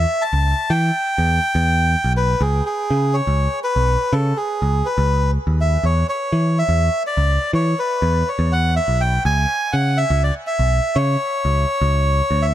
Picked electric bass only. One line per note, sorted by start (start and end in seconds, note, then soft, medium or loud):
0.33 0.53 C#2 medium
0.70 0.90 E3 medium
1.18 1.38 E2 medium
1.55 1.95 E2 medium
2.04 2.34 B1 medium
2.41 2.60 C#2 medium
2.90 3.20 C#3 medium
3.27 3.47 C#2 medium
3.76 3.95 B1 medium
4.13 4.32 C#3 medium
4.62 4.81 C#2 medium
4.98 5.37 C#2 medium
5.47 5.76 D#2 medium
5.83 6.03 E2 medium
6.32 6.62 E3 medium
6.69 6.88 E2 medium
7.17 7.37 C#2 medium
7.53 7.73 E3 medium
8.02 8.22 E2 medium
8.39 8.78 E2 medium
8.88 9.17 B1 medium
9.25 9.45 C#2 medium
9.73 10.03 C#3 medium
10.10 10.30 C#2 medium
10.59 10.79 B1 medium
10.96 11.15 C#3 medium
11.45 11.64 C#2 medium
11.81 12.21 C#2 medium
12.31 12.54 D2 medium